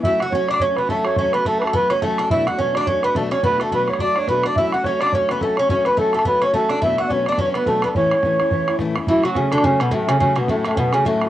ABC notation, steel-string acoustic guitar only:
X:1
M:4/4
L:1/8
Q:"Swing" 1/4=213
K:F#m
V:1 name="Steel-string acoustic guitar"
[F,A,CF] [A,CF] [F,A,CF] [A,CF] [F,A,CF] [A,CF] [F,A,CF] [A,CF] | [F,A,CF] [A,CF] [F,A,CF] [A,CF] [F,A,CF] [A,CF] [F,A,CF] [A,CF] | [B,,F,A,DF] [A,DF] [B,,F,A,DF] [A,DF] [F,A,DF] [A,DF] [B,,F,A,DF] [A,DF] | [B,,F,A,DF] [A,DF] [B,,F,A,DF] [A,DF] [F,A,DF] [A,DF] [B,,F,A,DF] [A,DF] |
[F,A,CF] [A,CF] [F,A,CF] [A,CF] [F,A,CF] [A,CF] [F,A,CF] [A,CF] | [F,A,CF] [A,CF] [F,A,CF] [A,CF] [F,A,CF] [A,CF] [F,A,CF] [A,CF] | [B,,F,A,B,D] [A,B,D] [B,,F,A,B,D] [A,B,D] [F,A,B,D] [A,B,D] [B,,F,A,B,D] [A,B,D] | [A,,E,A,CE] [A,CE] [A,,E,A,CE] [A,CE] [E,A,CE] [A,CE] [A,,E,A,CE] [A,CE] |
[F,A,CF] [A,CF] [F,A,CF] [A,CF] [F,A,CF] [A,CF] [F,A,CF] [A,CF] | [F,A,CF] [A,CF] [F,A,CF] [A,CF] [F,A,CF] [A,CF] [F,A,CF] [A,CF] |]